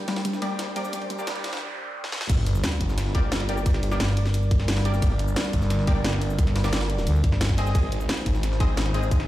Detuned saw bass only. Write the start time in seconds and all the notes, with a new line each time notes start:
2.29 G1
2.81 G1
3.66 G1
5.02 G1
5.53 G1
6.39 G1
6.73 G1
7.75 G#1
8.26 G#1
9.11 G#1